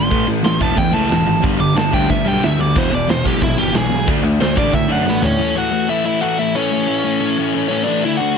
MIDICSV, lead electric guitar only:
0, 0, Header, 1, 2, 480
1, 0, Start_track
1, 0, Key_signature, 3, "major"
1, 0, Tempo, 330033
1, 164, Time_signature, 4, 2, 24, 8
1, 12186, End_track
2, 0, Start_track
2, 0, Title_t, "Lead electric guitar"
2, 0, Program_c, 0, 29
2, 0, Note_on_c, 0, 84, 105
2, 382, Note_off_c, 0, 84, 0
2, 650, Note_on_c, 0, 84, 98
2, 882, Note_off_c, 0, 84, 0
2, 904, Note_on_c, 0, 81, 91
2, 1127, Note_on_c, 0, 79, 86
2, 1129, Note_off_c, 0, 81, 0
2, 1359, Note_off_c, 0, 79, 0
2, 1359, Note_on_c, 0, 81, 84
2, 1578, Note_off_c, 0, 81, 0
2, 1595, Note_on_c, 0, 81, 114
2, 2069, Note_off_c, 0, 81, 0
2, 2331, Note_on_c, 0, 86, 114
2, 2564, Note_off_c, 0, 86, 0
2, 2567, Note_on_c, 0, 81, 97
2, 2820, Note_off_c, 0, 81, 0
2, 2820, Note_on_c, 0, 79, 95
2, 3050, Note_off_c, 0, 79, 0
2, 3053, Note_on_c, 0, 76, 92
2, 3286, Note_off_c, 0, 76, 0
2, 3305, Note_on_c, 0, 79, 88
2, 3542, Note_off_c, 0, 79, 0
2, 3542, Note_on_c, 0, 76, 95
2, 3791, Note_off_c, 0, 76, 0
2, 3791, Note_on_c, 0, 74, 89
2, 4016, Note_off_c, 0, 74, 0
2, 4042, Note_on_c, 0, 72, 102
2, 4262, Note_off_c, 0, 72, 0
2, 4278, Note_on_c, 0, 74, 99
2, 4499, Note_off_c, 0, 74, 0
2, 4501, Note_on_c, 0, 72, 101
2, 4731, Note_off_c, 0, 72, 0
2, 4746, Note_on_c, 0, 67, 98
2, 4974, Note_off_c, 0, 67, 0
2, 4989, Note_on_c, 0, 64, 101
2, 5208, Note_off_c, 0, 64, 0
2, 5208, Note_on_c, 0, 67, 98
2, 5445, Note_off_c, 0, 67, 0
2, 5469, Note_on_c, 0, 68, 125
2, 5929, Note_off_c, 0, 68, 0
2, 6415, Note_on_c, 0, 72, 109
2, 6633, Note_on_c, 0, 74, 91
2, 6648, Note_off_c, 0, 72, 0
2, 6898, Note_off_c, 0, 74, 0
2, 6898, Note_on_c, 0, 76, 83
2, 7130, Note_off_c, 0, 76, 0
2, 7151, Note_on_c, 0, 78, 100
2, 7401, Note_on_c, 0, 71, 108
2, 7411, Note_on_c, 0, 59, 76
2, 7604, Note_off_c, 0, 59, 0
2, 7609, Note_off_c, 0, 78, 0
2, 7610, Note_on_c, 0, 73, 95
2, 7622, Note_on_c, 0, 61, 79
2, 7635, Note_off_c, 0, 71, 0
2, 8065, Note_off_c, 0, 61, 0
2, 8107, Note_off_c, 0, 73, 0
2, 8112, Note_on_c, 0, 66, 84
2, 8112, Note_on_c, 0, 78, 93
2, 8551, Note_off_c, 0, 66, 0
2, 8570, Note_on_c, 0, 76, 92
2, 8593, Note_off_c, 0, 78, 0
2, 8599, Note_on_c, 0, 64, 85
2, 8796, Note_off_c, 0, 76, 0
2, 8810, Note_off_c, 0, 64, 0
2, 8814, Note_on_c, 0, 76, 98
2, 8838, Note_on_c, 0, 64, 83
2, 9031, Note_off_c, 0, 64, 0
2, 9036, Note_on_c, 0, 78, 95
2, 9060, Note_off_c, 0, 76, 0
2, 9063, Note_on_c, 0, 66, 79
2, 9281, Note_off_c, 0, 66, 0
2, 9290, Note_on_c, 0, 76, 115
2, 9292, Note_off_c, 0, 78, 0
2, 9318, Note_on_c, 0, 64, 78
2, 9526, Note_off_c, 0, 76, 0
2, 9526, Note_on_c, 0, 73, 92
2, 9529, Note_off_c, 0, 64, 0
2, 9542, Note_on_c, 0, 61, 73
2, 11154, Note_off_c, 0, 73, 0
2, 11155, Note_off_c, 0, 61, 0
2, 11171, Note_on_c, 0, 73, 102
2, 11212, Note_on_c, 0, 61, 78
2, 11397, Note_off_c, 0, 73, 0
2, 11403, Note_on_c, 0, 74, 105
2, 11432, Note_off_c, 0, 61, 0
2, 11454, Note_on_c, 0, 62, 82
2, 11646, Note_on_c, 0, 76, 109
2, 11672, Note_off_c, 0, 74, 0
2, 11673, Note_off_c, 0, 62, 0
2, 11699, Note_on_c, 0, 64, 94
2, 11879, Note_off_c, 0, 76, 0
2, 11885, Note_on_c, 0, 78, 111
2, 11916, Note_off_c, 0, 64, 0
2, 11935, Note_on_c, 0, 66, 94
2, 12186, Note_off_c, 0, 66, 0
2, 12186, Note_off_c, 0, 78, 0
2, 12186, End_track
0, 0, End_of_file